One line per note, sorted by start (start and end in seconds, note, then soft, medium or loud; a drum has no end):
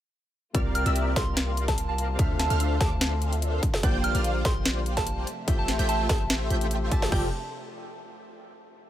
0.54 0.84 C2 loud
0.54 0.83 C3 loud
0.54 2.17 C3 medium
0.54 2.17 G3 medium
0.54 2.17 A#3 medium
0.54 0.83 C4 medium
0.54 0.83 F4 medium
0.54 3.60 F4 medium
0.54 0.83 G4 medium
0.54 0.83 A#4 medium
0.54 0.84 A#4 medium
0.54 0.83 D5 medium
0.54 0.84 D5 loud
0.54 0.83 F5 loud
0.54 0.83 F6 loud
0.54 kick loud
0.54 closed hi-hat medium
0.75 0.87 F6 medium
0.75 closed hi-hat medium
0.84 1.14 C2 loud
0.84 2.16 C3 medium
0.84 2.16 C4 medium
0.84 1.14 C4 medium
0.84 2.17 F4 medium
0.84 1.14 G4 medium
0.84 1.14 A#4 medium
0.84 2.17 A#4 medium
0.84 1.14 D5 medium
0.84 2.18 D5 medium
0.84 1.14 E5 medium
0.84 1.14 E6 loud
0.84 closed hi-hat medium
0.96 closed hi-hat medium
1.16 2.17 C2 medium
1.16 2.17 C4 medium
1.16 2.17 G4 medium
1.16 2.17 A#4 medium
1.16 2.17 D5 medium
1.16 2.17 F5 medium
1.16 1.48 C6 medium
1.16 2.17 F6 medium
1.16 kick loud
1.16 snare medium
1.16 closed hi-hat medium
1.37 snare loud
1.37 closed hi-hat medium
1.57 closed hi-hat medium
1.68 1.87 A5 medium
1.68 kick medium
1.68 snare medium
1.68 closed hi-hat medium
1.78 closed hi-hat medium
1.89 2.19 A5 medium
1.98 closed hi-hat medium
2.18 2.48 D2 loud
2.18 2.47 D3 loud
2.18 5.24 D3 medium
2.18 3.61 A3 medium
2.18 3.61 C4 medium
2.18 2.47 D4 medium
2.18 2.48 D4 medium
2.18 2.48 F4 medium
2.18 2.48 A4 medium
2.18 2.48 C5 medium
2.18 2.48 E5 medium
2.18 2.48 E5 loud
2.18 2.48 F5 medium
2.18 2.48 F6 medium
2.18 kick loud
2.18 closed hi-hat medium
2.39 2.71 A5 medium
2.39 snare medium
2.39 closed hi-hat medium
2.48 2.79 D2 loud
2.48 3.61 D3 medium
2.48 3.61 D4 medium
2.48 2.78 D4 loud
2.48 3.62 F4 medium
2.48 2.78 A4 medium
2.48 2.78 C5 medium
2.48 3.62 C5 medium
2.48 2.78 E5 medium
2.48 2.78 F5 loud
2.48 2.78 F6 loud
2.48 closed hi-hat medium
2.60 closed hi-hat medium
2.81 3.60 D2 loud
2.81 3.62 D4 medium
2.81 3.62 A4 medium
2.81 3.62 C5 medium
2.81 3.62 E5 medium
2.81 3.62 F5 medium
2.81 3.38 A5 medium
2.81 3.62 D6 medium
2.81 kick loud
2.81 snare medium
2.81 closed hi-hat medium
3.01 snare loud
3.01 closed hi-hat medium
3.22 closed hi-hat medium
3.33 closed hi-hat medium
3.42 closed hi-hat medium
3.63 5.25 G3 medium
3.63 5.25 A#3 medium
3.63 5.25 F4 medium
3.63 kick loud
3.63 closed hi-hat medium
3.74 snare medium
3.82 4.13 A#1 loud
3.82 4.12 A#3 loud
3.82 4.12 A#3 medium
3.82 4.12 F4 medium
3.82 4.12 G4 medium
3.82 4.12 C5 medium
3.82 4.12 D5 medium
3.82 4.13 D5 loud
3.82 4.12 G5 loud
3.82 4.12 G6 loud
3.82 kick loud
3.82 closed hi-hat medium
4.04 4.16 F6 medium
4.04 closed hi-hat medium
4.13 4.43 A#1 loud
4.13 5.25 A#3 medium
4.13 4.43 A#3 medium
4.13 5.25 F4 medium
4.13 4.43 F4 medium
4.13 5.26 G4 medium
4.13 4.43 C5 medium
4.13 5.26 C5 medium
4.13 4.43 D5 medium
4.13 5.27 D5 medium
4.13 4.43 F5 loud
4.13 4.43 F6 loud
4.13 closed hi-hat medium
4.24 closed hi-hat medium
4.45 5.24 A#1 loud
4.45 5.26 A#3 medium
4.45 5.26 F4 medium
4.45 5.26 C5 medium
4.45 5.26 D5 medium
4.45 5.26 G5 medium
4.45 4.76 C6 medium
4.45 5.26 G6 medium
4.45 kick loud
4.45 snare medium
4.45 closed hi-hat medium
4.66 snare loud
4.66 closed hi-hat medium
4.86 closed hi-hat medium
4.97 5.15 A5 medium
4.97 kick medium
4.97 snare medium
4.97 closed hi-hat medium
5.07 closed hi-hat medium
5.27 7.10 C3 medium
5.27 7.10 F3 medium
5.27 7.10 A3 medium
5.27 7.10 E5 medium
5.27 closed hi-hat medium
5.47 5.77 A1 loud
5.47 5.76 A3 loud
5.47 5.76 A3 medium
5.47 5.76 F4 medium
5.47 5.77 G4 medium
5.47 5.76 C5 medium
5.47 5.77 C5 medium
5.47 5.76 E5 medium
5.47 5.77 E5 loud
5.47 5.76 G5 loud
5.47 5.76 G6 medium
5.47 kick loud
5.47 closed hi-hat medium
5.59 5.70 A5 medium
5.68 snare medium
5.68 closed hi-hat medium
5.77 6.07 A1 loud
5.77 6.48 A3 medium
5.77 6.07 A3 loud
5.77 6.48 F4 medium
5.77 6.07 F4 medium
5.77 6.49 G4 medium
5.77 6.07 C5 medium
5.77 6.49 C5 medium
5.77 6.07 E5 medium
5.77 6.07 G5 loud
5.77 6.07 G6 loud
5.77 closed hi-hat medium
5.81 6.50 E5 medium
5.89 6.01 A5 medium
5.89 closed hi-hat medium
6.09 6.49 A1 loud
6.09 6.48 A3 medium
6.09 6.48 F4 medium
6.09 6.48 C5 medium
6.09 6.48 E5 medium
6.09 6.48 G5 medium
6.09 6.21 A5 medium
6.09 6.49 G6 medium
6.09 kick loud
6.09 snare medium
6.09 closed hi-hat medium
6.30 snare loud
6.30 closed hi-hat medium
6.49 6.90 A1 loud
6.49 6.89 A3 medium
6.49 6.89 F4 medium
6.49 6.89 G4 medium
6.49 6.89 C5 medium
6.49 6.89 E5 medium
6.49 6.90 E5 medium
6.49 6.89 G5 loud
6.49 6.89 G6 loud
6.49 closed hi-hat medium
6.61 closed hi-hat medium
6.71 closed hi-hat medium
6.90 7.10 A1 loud
6.90 6.99 A3 medium
6.90 7.10 A3 medium
6.90 6.99 F4 medium
6.90 7.10 F4 medium
6.90 7.00 G4 medium
6.90 7.10 C5 medium
6.90 7.00 C5 medium
6.90 7.10 E5 medium
6.90 7.00 E5 loud
6.90 7.10 A5 medium
6.90 7.12 A5 medium
6.90 7.10 A6 medium
6.90 kick loud
6.90 closed hi-hat medium
7.02 snare medium
7.09 7.31 F1 loud
7.09 7.31 C3 medium
7.09 7.26 F3 medium
7.09 7.28 F3 medium
7.09 7.31 F3 medium
7.09 7.31 A3 medium
7.09 7.31 D4 medium
7.09 7.27 F4 medium
7.09 7.28 G4 medium
7.09 7.28 A4 medium
7.09 7.28 D5 medium
7.09 7.28 G5 loud
7.09 7.28 G6 loud
7.09 kick loud
7.09 crash medium
7.14 7.28 A4 medium
7.14 7.29 D5 loud